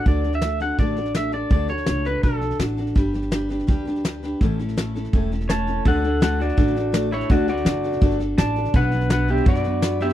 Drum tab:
HH |----p-------p---|----p-------p---|----p-------p---|----p-------p---|
SD |o-ooo-o-o-ooo-o-|o-ooo-o-o-ooo-oo|o-ooo-ooo-ooo-o-|o-ooo-ooo-ooo-o-|
BD |o-------o-------|o-------o-------|o-------o-------|o-------o-------|

HH |----p-------p---|----p-------p---|----p-------p---|
SD |o-o-o-ooooo-o-oo|o-ooo-ooooo-o-oo|o-ooo-ooooo-o-oo|
BD |o-------o-------|o-------o-------|o-------o-------|